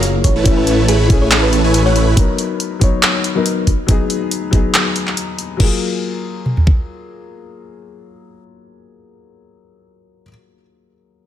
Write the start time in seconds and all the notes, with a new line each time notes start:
Already playing: F#1 F#3 A#3 F4 G#4 C#5 F5, impact
0.03 closed hi-hat
0.24 A1 C#5, kick, closed hi-hat
0.36 A3 E4 B4 C#5 A5
0.44 E3 A3 C#4, kick, closed hi-hat
0.57 B4
0.67 closed hi-hat
0.88 A3 E4 G#4 B4 C#5 B5, closed hi-hat
1.08 E3 A3 C#4 E4 G#4 B4 C#5 G#5, kick, closed hi-hat
1.22 C#5
1.31 A3 E4 B4 C#5 A5, clap, closed hi-hat
1.43 B4
1.53 closed hi-hat
1.64 A3 E4 B4 C#5 G#5
1.74 closed hi-hat
1.86 A3 E4 B4 C#5 F#5
1.96 A3 E4 B4 C#5 B5, closed hi-hat
2.15 F#3 B3 D#4 A#4, kick, closed hi-hat
2.38 closed hi-hat
2.60 closed hi-hat
2.79 F#3 B3 D#4, kick, closed hi-hat
2.83 C#5
3.03 clap, closed hi-hat
3.24 closed hi-hat
3.35 F#3 B3 D#4 A#4
3.46 closed hi-hat
3.67 kick, closed hi-hat
3.87 F#3 B3 D#4, kick, closed hi-hat
3.91 G#4
4.10 closed hi-hat
4.31 closed hi-hat
4.51 F#3 B3 D#4 G#4, kick, closed hi-hat
4.74 clap, closed hi-hat
4.96 closed hi-hat
5.07 clap
5.17 closed hi-hat
5.39 closed hi-hat
5.57 F#3 A#3, kick, crash
5.61 F4 G#4
6.46 mid tom
6.57 floor tom
6.67 kick